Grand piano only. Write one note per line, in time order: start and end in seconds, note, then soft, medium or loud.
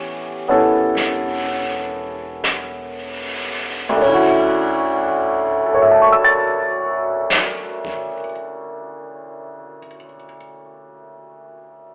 0.00 3.99 E3 soft
0.00 4.00 A3 soft
0.00 0.47 B3 soft
0.00 0.48 C#4 soft
0.00 4.04 G4 soft
0.48 4.01 B3 soft
0.48 4.00 C#4 soft
0.48 4.02 E4 soft
0.48 4.02 A4 soft
3.89 8.06 D2 soft
3.96 8.13 D3 soft
4.02 8.18 C#4 soft
4.08 8.24 E4 soft
4.14 8.31 F#4 soft
5.66 9.79 A4 soft
5.74 9.87 C#5 soft
5.82 9.95 E5 soft
5.91 10.04 A5 soft
6.02 10.14 C#6 soft
6.12 10.25 E6 soft
6.24 10.37 A6 soft